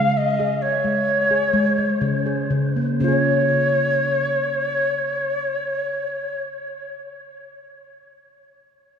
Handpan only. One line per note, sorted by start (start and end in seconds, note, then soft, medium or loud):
0.00 0.80 C#3 medium
0.00 0.40 G#3 soft
0.40 0.85 G#4 medium
0.85 1.31 G#3 soft
1.31 1.78 G#4 medium
1.53 1.77 G#3 medium
1.78 2.26 G#3 soft
2.01 2.43 C#3 medium
2.26 2.76 G#4 soft
2.50 2.93 C#3 medium
2.76 3.01 A#3 soft
3.00 6.42 C#3 medium
3.00 6.42 C#4 soft
3.00 6.46 F4 medium
3.08 6.50 G#4 soft
3.08 6.54 C#5 soft